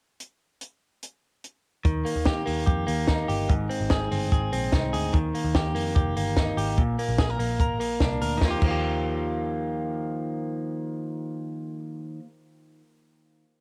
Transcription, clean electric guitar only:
1.85 D#3
2.05 A#3
2.26 G4
2.46 A#3
2.66 G4
2.87 A#3
3.08 D#4
3.28 G4
3.49 G#2
3.69 C4
3.91 G#4
4.11 C4
4.32 G#4
4.53 C4
4.73 D#4
4.93 G#4
5.13 D#3
5.35 A#3
5.55 G4
5.75 A#3
5.95 G4
6.17 A#3
6.37 D#4
6.57 G4
6.78 A#2
6.99 A#3
7.19 G#4
7.30 A#4
7.39 A#3
7.61 A#4
7.80 A#3
8.01 D4
8.22 A#4
8.38 D#3
8.42 F3 A#3
8.48 F4 G4
8.58 D#3
8.62 F3 A#3
8.68 F4 G4

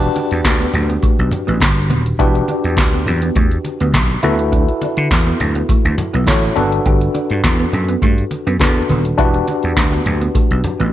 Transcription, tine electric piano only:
Already playing: D4 F#4 G4 B4
2.19 D4 F#4 G4 B4
4.23 E4 F#4 A4 B4
6.27 E4 F#4 A4 C#5
6.56 D4 F#4 A4 B4
8.60 D4 F#4 A4 B4
9.18 D4 F#4 G4 B4

